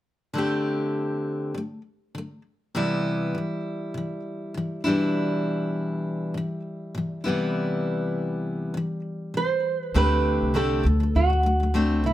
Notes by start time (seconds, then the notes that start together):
0.34 D3 A3 C4
0.38 G4
1.54 D3 A3
2.15 D3 A3
2.75 C3 E3 G3 B3 E4
3.35 C3 E3
3.94 C3 E3
4.54 C3 E3
4.84 E3 G3 D4 E4
4.89 B2
6.34 B2 E3
6.95 B2 E3
7.24 E3 G3 B3 E4
7.29 C3
8.74 C3 E3
9.34 C3 E3 C5
9.81 B4
9.94 D2 D3 A3 C4 G4 B4
10.42 C2
10.54 D3 A3 C4 G4 A4
10.84 D2 D3 A3
11.00 D3 A3
11.15 D2 F#4
11.30 D3 A3
11.43 D3 A3
11.60 D3 A3
11.74 D3 A3 C4
12.04 B1 D3 A3 E4